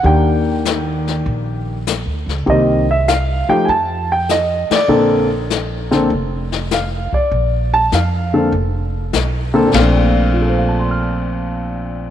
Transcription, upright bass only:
X:1
M:4/4
L:1/8
Q:"Swing" 1/4=99
K:Bb
V:1 name="Upright bass" clef=bass
E,,4 B,,,2- (3B,,, D,, _D,, | C,,3 z F,,3 z | B,,,4 F,,,3 z | B,,,2 F,,2 F,,,2 _C,,2 |
B,,,8 |]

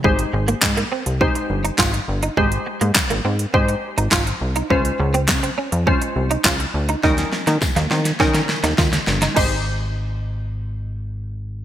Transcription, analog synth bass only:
X:1
M:4/4
L:1/16
Q:1/4=103
K:Ab
V:1 name="Analog synth bass" clef=bass
A,,,2 A,,,2 A,,2 z C,,2 z G,,,2 A,,,2 G,,,2 | A,,,2 z A,, z A,,, A,,2 A,,2 z A,,, A,,,2 C,,2 | D,,2 D,,2 D,2 z F,,2 z C,,2 D,,2 =D,,2 | E,,2 z E, z E,, E,2 E,2 z E,, E,,2 G,,,2 |
A,,,16 |]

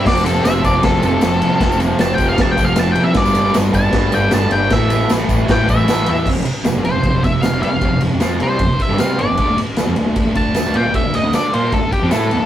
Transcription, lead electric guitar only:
X:1
M:4/4
L:1/8
Q:1/4=154
K:Flyd
V:1 name="Lead electric guitar"
d A e d A A3- | A z (3a g f (3a g f (3a g e | d2 z a2 g a g | e2 z2 g e2 e |
z3 c2 e f f- | f z2 c2 e f d- | d z4 a2 g | e ^d =d c A G A2 |]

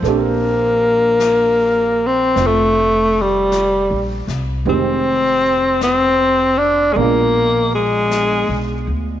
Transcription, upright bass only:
X:1
M:4/4
L:1/8
Q:"Swing" 1/4=52
K:Bb
V:1 name="Upright bass" clef=bass
B,,,4 F,,,2- (3F,,, B,,, C,, | F,,,4 B,,,2- (3B,,, _C,, D,, |]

